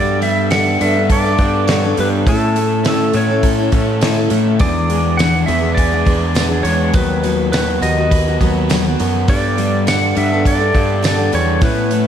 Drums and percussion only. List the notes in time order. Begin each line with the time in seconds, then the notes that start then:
0.22 open hi-hat
0.51 snare, open hi-hat
0.81 open hi-hat
1.10 kick, open hi-hat
1.38 kick, open hi-hat
1.68 snare, open hi-hat
1.97 open hi-hat
2.27 kick, open hi-hat
2.56 open hi-hat
2.85 snare, open hi-hat
3.13 open hi-hat
3.43 kick, open hi-hat
3.72 kick, open hi-hat
4.01 snare, open hi-hat
4.30 open hi-hat
4.59 kick, open hi-hat
4.90 open hi-hat
5.19 snare, open hi-hat, tambourine
5.48 open hi-hat
5.77 kick, open hi-hat
6.07 kick, open hi-hat
6.35 snare, open hi-hat, tambourine
6.65 open hi-hat
6.94 kick, open hi-hat
7.24 open hi-hat
7.53 snare, open hi-hat, tambourine
7.83 open hi-hat
8.11 kick, open hi-hat
8.41 kick, open hi-hat
8.70 snare, open hi-hat, tambourine
9.00 open hi-hat
9.28 kick, open hi-hat
9.58 open hi-hat
9.87 snare, open hi-hat, tambourine
10.17 open hi-hat
10.45 kick, open hi-hat
10.75 kick, open hi-hat
11.04 snare, open hi-hat, tambourine
11.33 open hi-hat
11.62 kick, open hi-hat
11.91 open hi-hat